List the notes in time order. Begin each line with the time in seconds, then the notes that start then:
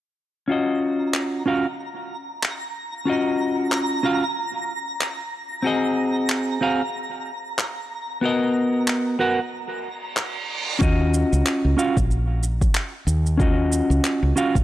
0.48 C#4 F4 F#4 A#5
0.52 D#5
1.14 clap
1.46 C#4 F4 F#4 F5
2.43 clap
3.05 C#4 F4 F#4
3.10 D#5
3.72 clap
4.03 C#4 F4 F#4 F5
5.01 clap
5.63 C4 F#4 G#4
5.67 D#5
6.30 clap
6.61 C4 F#4 G#4 F5
7.59 clap
8.21 B3 F#4 A#4
8.25 D#5
8.88 clap
9.19 B3 F#4 A#4 F#5
9.52 reverse cymbal
10.17 clap
10.79 D#2 C#4 F4 F#4, kick, shaker
10.83 D#5
11.14 shaker
11.33 C#2, shaker
11.46 clap, shaker
11.65 C#2
11.77 C#4 F4 F#4 F5, shaker
11.97 A#1, kick, shaker
12.11 shaker
12.43 shaker
12.61 kick, shaker
12.75 clap, shaker
13.07 D#2, shaker
13.26 shaker
13.37 C#4 F4 F#4, kick, shaker
13.42 D#5
13.72 shaker
13.90 C#2, shaker
14.04 clap, shaker
14.23 C#2
14.36 C#4 F4 F#4 F5, shaker
14.55 A#1, kick, shaker